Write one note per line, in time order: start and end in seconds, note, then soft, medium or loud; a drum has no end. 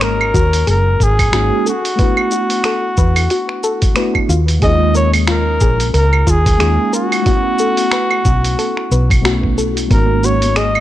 0.00 0.31 G#1 loud
0.00 1.28 G#3 medium
0.00 1.29 A#3 medium
0.00 1.30 C#4 medium
0.00 1.31 D#4 medium
0.00 1.32 F#4 medium
0.00 0.19 A#4 medium
0.00 0.68 A#4 loud
0.00 finger snap loud
0.00 open hi-hat soft
0.00 shaker soft
0.21 claves medium
0.34 0.63 D#2 medium
0.34 0.44 F#4 medium
0.34 kick loud
0.34 shaker medium
0.53 open hi-hat medium
0.53 shaker soft
0.67 0.96 F#1 medium
0.67 0.77 G#4 medium
0.67 1.05 A#4 medium
0.67 open hi-hat soft
0.67 shaker soft
1.00 1.29 G#1 medium
1.00 1.68 G#4 loud
1.00 1.17 A#4 medium
1.00 kick medium
1.00 shaker medium
1.19 kick loud
1.19 open hi-hat medium
1.19 claves medium
1.19 shaker soft
1.32 1.49 G#1 medium
1.32 1.44 G#3 loud
1.32 1.44 A#3 medium
1.32 1.45 C#4 medium
1.32 1.45 D#4 medium
1.32 1.43 F#4 medium
1.32 1.46 F#4 loud
1.32 finger snap loud
1.32 open hi-hat soft
1.32 shaker soft
1.66 4.27 F#4 loud
1.66 1.76 A4 medium
1.66 shaker medium
1.85 open hi-hat medium
1.85 shaker soft
1.96 3.92 A3 medium
1.96 3.93 B3 medium
1.96 3.94 D4 medium
1.96 2.16 B4 medium
1.96 kick loud
1.96 open hi-hat soft
1.96 shaker soft
2.01 3.95 E4 medium
2.01 3.95 F#4 medium
2.17 claves medium
2.31 2.42 F#4 medium
2.31 shaker medium
2.50 open hi-hat medium
2.50 shaker soft
2.64 2.75 A4 medium
2.64 finger snap loud
2.64 open hi-hat soft
2.64 shaker soft
2.97 3.27 E2 medium
2.97 3.15 B4 medium
2.97 kick loud
2.97 shaker medium
3.16 open hi-hat medium
3.16 claves medium
3.16 shaker soft
3.30 3.41 F#4 medium
3.30 open hi-hat soft
3.30 shaker soft
3.49 finger snap soft
3.63 3.74 A4 medium
3.63 shaker medium
3.82 kick loud
3.82 open hi-hat medium
3.82 shaker soft
3.95 4.07 A3 medium
3.95 4.08 B3 medium
3.95 4.08 D4 medium
3.95 4.09 E4 loud
3.95 4.09 F#4 loud
3.95 4.14 B4 medium
3.95 finger snap loud
3.95 open hi-hat soft
3.95 shaker soft
4.15 kick medium
4.15 claves medium
4.29 4.58 D#2 medium
4.29 4.40 F4 medium
4.29 shaker medium
4.48 open hi-hat medium
4.48 shaker soft
4.60 5.58 D#2 loud
4.60 6.56 G#3 medium
4.60 6.57 A#3 medium
4.60 6.57 C#4 medium
4.60 4.73 G#4 medium
4.60 kick loud
4.60 open hi-hat soft
4.60 shaker soft
4.64 6.58 D#4 medium
4.64 6.59 F4 medium
4.64 4.94 D#5 loud
4.95 5.13 A#4 medium
4.95 5.12 C#5 loud
4.95 shaker medium
5.14 open hi-hat medium
5.14 claves medium
5.14 shaker soft
5.28 5.39 F4 medium
5.28 5.92 A#4 loud
5.28 finger snap loud
5.28 open hi-hat soft
5.28 shaker soft
5.61 5.90 A#1 medium
5.61 5.72 G#4 medium
5.61 kick loud
5.61 shaker medium
5.80 open hi-hat medium
5.80 shaker soft
5.94 6.23 C#2 medium
5.94 6.11 A#4 medium
5.94 6.32 A#4 medium
5.94 open hi-hat soft
5.94 shaker soft
6.13 claves medium
6.27 6.56 D#2 medium
6.27 6.38 F4 medium
6.27 6.94 G#4 loud
6.27 kick medium
6.27 shaker medium
6.46 kick loud
6.46 open hi-hat medium
6.46 shaker soft
6.58 6.77 D#2 medium
6.58 6.71 G#3 loud
6.58 6.71 A#3 medium
6.58 6.72 C#4 medium
6.58 6.72 D#4 medium
6.58 6.72 F4 loud
6.58 6.71 G#4 medium
6.58 finger snap loud
6.58 open hi-hat soft
6.58 shaker soft
6.93 9.54 F#4 loud
6.93 7.10 A#4 medium
6.93 shaker medium
7.12 open hi-hat soft
7.12 claves medium
7.12 shaker soft
7.22 9.19 A3 medium
7.22 9.20 B3 medium
7.22 9.21 C#4 medium
7.22 kick loud
7.22 open hi-hat soft
7.22 shaker soft
7.27 9.21 E4 medium
7.27 7.37 F#4 medium
7.27 9.22 F#4 medium
7.59 7.70 A4 medium
7.59 shaker medium
7.77 open hi-hat soft
7.77 shaker soft
7.91 8.10 B4 medium
7.91 finger snap medium
7.91 open hi-hat soft
7.91 shaker soft
8.11 claves medium
8.25 8.54 B1 medium
8.25 8.36 F#4 medium
8.25 kick loud
8.25 shaker medium
8.44 open hi-hat medium
8.44 shaker soft
8.59 8.69 A4 medium
8.59 open hi-hat soft
8.59 shaker soft
8.77 finger snap soft
8.91 9.87 B1 medium
8.91 9.09 B4 medium
8.91 shaker medium
9.10 kick loud
9.10 open hi-hat medium
9.10 claves medium
9.10 shaker soft
9.22 9.35 A3 loud
9.22 9.35 B3 medium
9.22 9.35 C#4 medium
9.22 9.36 E4 medium
9.22 9.35 F#4 medium
9.22 9.36 F#4 loud
9.22 finger snap loud
9.22 open hi-hat soft
9.22 shaker soft
9.43 kick medium
9.58 9.68 A4 medium
9.58 shaker medium
9.77 open hi-hat soft
9.77 shaker soft
9.87 10.80 G#1 loud
9.87 10.80 G#3 medium
9.87 10.80 A#3 medium
9.87 10.80 C#4 medium
9.87 10.08 A#4 medium
9.87 kick loud
9.87 open hi-hat soft
9.87 high conga medium
9.87 shaker soft
9.92 10.80 D#4 medium
9.92 10.80 F#4 medium
9.92 10.27 A#4 medium
10.23 10.34 F#4 medium
10.23 10.59 C#5 medium
10.23 shaker medium
10.42 open hi-hat medium
10.42 high conga medium
10.42 shaker soft
10.56 10.67 G#4 medium
10.56 10.80 D#5 loud
10.56 finger snap medium
10.56 open hi-hat soft
10.56 shaker soft
10.75 claves medium